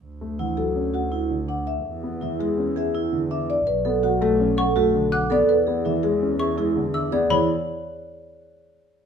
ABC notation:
X:1
M:5/4
L:1/8
Q:1/4=165
K:Emix
V:1 name="Xylophone"
z8 z2 | z8 z2 | z4 z c' z2 f' z | z4 z c' z2 e' z |
b z8 z |]
V:2 name="Marimba"
z2 f A z f z2 f e | z2 e G z e z2 e d | B z f A z f A z f d | B z e G z e G z e d |
c z8 z |]
V:3 name="Vibraphone"
z2 E z2 F E z D z | z2 E z2 G E z D z | z A F z2 A F z D A | z G E z2 G E z D G |
E z8 z |]
V:4 name="Grand piano" clef=bass
z A, E, F, C z2 D, z2 | z B, E, G, C z2 D, z2 | z B, F, A, C z A, D, z B, | z B, E, G, C z G, D, z B, |
E, z8 z |]
V:5 name="Double bass" clef=bass
D,,8- D,,2 | E,,8- E,,2 | B,,,8- B,,,2 | E,,8- E,,2 |
E,, z8 z |]